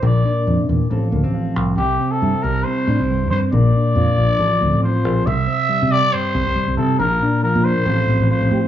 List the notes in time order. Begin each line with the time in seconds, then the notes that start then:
0.02 A#1 A#2 A#4 D5
0.25 D4
0.47 F2 C3
0.69 E2 A#2
0.90 A1 A2 F3 C4 F4 A4
1.12 D2 A#3
1.24 A1 C4
1.34 F4
1.54 C2 F3
1.77 C2 C3 G4, muted clean electric guitar stroke
2.00 C4
2.11 A4
2.22 G2 E4
2.42 C2 G3 A#4
2.64 C4 C5
2.87 A2 D4
3.00 C2 E4
3.10 G2
3.30 G2 C4 C5
3.52 A#1 A#2 A#4 D5
3.76 D4
3.95 F2 F4
4.17 A#1 F3
4.39 A1 A2 A4
4.61 D2 C4
4.73 A1
4.83 F4 C5
5.04 A#1 F3
5.26 C2 C3 E5, muted clean electric guitar stroke
5.47 C4
5.69 G3, muted clean electric guitar stroke
5.81 C3 E4
5.92 G4 D5
6.12 G2 C5
6.35 C2
6.46 C2
6.55 G3
6.67 C2
6.77 C3 E4 A4
6.99 A#1 A#2 D4 A#4
7.11 F4
7.22 D4
7.43 F3 F4 A#4
7.55 A#2
7.64 A#4 C5
7.86 A1 A2 F3 C4 F4 A4
8.08 A1 C4
8.20 A1
8.30 F3 F4 C5
8.41 A1
8.51 A2 G4
8.64 muted clean electric guitar stroke